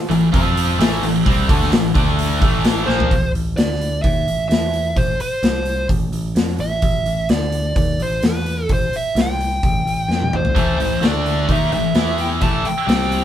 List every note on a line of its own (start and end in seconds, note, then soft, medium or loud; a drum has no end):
0.10 0.31 A1 medium
0.10 0.29 A2 medium
0.10 0.29 E3 medium
0.10 open hi-hat medium
0.33 0.77 F2 loud
0.33 0.78 F3 loud
0.33 0.79 C4 loud
0.33 0.79 F4 loud
0.33 kick loud
0.33 open hi-hat medium
0.57 open hi-hat medium
0.78 1.00 A1 medium
0.78 1.02 A2 medium
0.78 1.02 E3 loud
0.78 1.02 A3 loud
0.78 snare loud
0.78 open hi-hat medium
1.02 1.23 A1 medium
1.02 1.21 A2 medium
1.02 1.22 E3 medium
1.02 open hi-hat medium
1.26 1.47 C2 loud
1.26 1.48 C3 loud
1.26 1.49 G3 loud
1.26 1.49 C4 loud
1.26 kick loud
1.26 open hi-hat medium
1.49 1.70 D2 loud
1.49 1.71 D3 medium
1.49 1.72 A3 medium
1.49 1.72 D4 medium
1.49 kick loud
1.49 open hi-hat medium
1.63 snare soft
1.72 1.94 A1 medium
1.72 1.90 A2 medium
1.72 1.91 E3 medium
1.72 snare loud
1.72 open hi-hat medium
1.94 2.38 D2 loud
1.94 2.40 D3 loud
1.94 2.40 A3 medium
1.94 2.41 D4 loud
1.94 kick loud
1.94 open hi-hat medium
2.19 open hi-hat medium
2.41 2.84 A1 medium
2.41 2.87 A2 medium
2.41 2.87 E3 loud
2.41 2.87 A3 loud
2.41 kick loud
2.41 open hi-hat medium
2.64 snare loud
2.64 open hi-hat medium
2.87 3.09 A#1 medium
2.87 3.10 A#2 loud
2.87 3.10 F3 medium
2.87 3.10 A#3 loud
2.87 3.30 C5 loud
2.87 snare medium
3.00 floor tom medium
3.11 3.33 A1 medium
3.11 kick loud
3.11 open hi-hat medium
3.35 3.56 A1 medium
3.35 open hi-hat soft
3.57 4.00 D2 medium
3.57 4.02 D5 medium
3.57 snare loud
3.57 open hi-hat medium
3.81 open hi-hat soft
4.02 4.26 D#2 medium
4.02 4.47 E5 loud
4.02 kick loud
4.02 open hi-hat medium
4.26 4.48 A1 medium
4.26 open hi-hat soft
4.49 4.93 E2 medium
4.49 4.97 E5 medium
4.49 snare medium
4.49 open hi-hat medium
4.73 open hi-hat medium
4.96 5.18 A1 medium
4.96 5.20 C5 medium
4.96 kick medium
4.96 open hi-hat medium
5.20 5.86 C5 medium
5.20 muted picked electric bass stroke soft
5.20 open hi-hat medium
5.43 5.86 C2 medium
5.43 snare loud
5.43 open hi-hat medium
5.65 open hi-hat soft
5.89 6.11 A1 loud
5.89 kick loud
5.89 open hi-hat medium
6.12 6.34 A1 medium
6.12 open hi-hat soft
6.35 6.57 F2 medium
6.35 snare loud
6.35 open hi-hat medium
6.58 6.81 A1 medium
6.58 7.30 E5 medium
6.58 open hi-hat soft
6.82 7.04 A1 medium
6.82 kick loud
6.82 open hi-hat medium
7.06 7.28 A1 medium
7.06 open hi-hat soft
7.29 7.73 D2 medium
7.29 7.76 D5 medium
7.29 snare loud
7.29 open hi-hat medium
7.52 open hi-hat soft
7.76 7.97 D#2 medium
7.76 8.01 D5 medium
7.76 kick loud
7.76 open hi-hat medium
7.99 8.21 A1 medium
7.99 8.25 C5 medium
7.99 open hi-hat medium
8.23 8.66 E2 medium
8.23 8.72 B4 medium
8.23 snare loud
8.23 open hi-hat medium
8.46 open hi-hat soft
8.69 8.91 A1 medium
8.69 kick loud
8.69 open hi-hat medium
8.73 8.95 C5 medium
8.92 9.18 E5 medium
8.92 muted picked electric bass stroke soft
8.92 open hi-hat soft
9.15 9.59 C2 medium
9.15 snare loud
9.15 open hi-hat medium
9.21 10.39 G5 medium
9.41 open hi-hat soft
9.63 9.85 A1 medium
9.63 kick loud
9.63 open hi-hat medium
9.85 10.07 A1 medium
9.85 open hi-hat soft
10.08 10.30 F2 medium
10.08 snare medium
10.22 high tom medium
10.32 10.54 A1 medium
10.32 mid tom medium
10.36 11.06 C5 medium
10.45 floor tom medium
10.55 10.78 A1 medium
10.55 10.77 A2 medium
10.55 10.78 E3 loud
10.55 10.79 A3 loud
10.55 kick loud
10.55 open hi-hat medium
10.78 11.00 A1 medium
10.78 10.97 A2 medium
10.78 10.98 E3 medium
10.78 open hi-hat soft
11.01 11.45 D2 medium
11.01 11.48 D3 medium
11.01 11.48 A3 medium
11.01 11.48 D4 medium
11.01 snare loud
11.01 open hi-hat medium
11.06 11.51 D5 medium
11.26 open hi-hat soft
11.49 11.71 D#2 medium
11.49 11.72 D#3 loud
11.49 11.72 A#3 loud
11.49 11.72 D#4 loud
11.49 11.72 E5 medium
11.49 kick medium
11.49 open hi-hat medium
11.71 11.94 A1 medium
11.71 11.91 A2 medium
11.71 11.91 E3 medium
11.71 12.21 E5 medium
11.71 open hi-hat soft
11.94 12.38 E2 medium
11.94 12.41 E3 medium
11.94 12.42 B3 medium
11.94 12.42 E4 medium
11.94 snare loud
11.94 open hi-hat medium
12.18 12.27 G5 medium
12.18 open hi-hat soft
12.41 12.64 A1 medium
12.41 12.64 A2 medium
12.41 12.65 E3 loud
12.41 12.65 A3 medium
12.41 12.66 A5 loud
12.41 kick medium
12.41 open hi-hat medium
12.65 13.24 G5 medium
12.65 muted distorted electric guitar stroke medium
12.65 muted picked electric bass stroke soft
12.65 open hi-hat medium
12.87 13.24 C2 medium
12.87 13.24 C3 medium
12.87 13.24 G3 medium
12.87 13.24 C4 medium
12.87 snare loud
12.87 open hi-hat medium
13.12 open hi-hat soft